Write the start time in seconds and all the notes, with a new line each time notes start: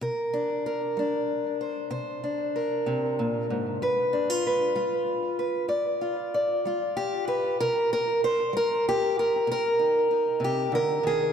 0.01 C3 A#4
0.33 D4
0.66 A#4
0.97 G3 D4
1.61 C5
1.91 C3 C5
2.24 D4
2.56 A#4
2.86 C3
3.19 A#2
3.50 G#2
3.82 G2 B4
4.13 D4
4.30 F4
4.47 B4
4.76 G3 F4
5.39 B4
5.69 G2 D5
6.01 F4
6.34 D5
6.65 G3 F4
6.97 G4
7.28 G4 B4
7.60 C3 A#4
7.93 A#4
8.24 C5
8.53 G3 A#4
8.89 G4
9.19 A#4
9.47 C3
9.52 A#4
9.79 D#4
10.11 D#4
10.40 C3
10.44 G4
10.72 D3 A#4
11.03 D#3 G#4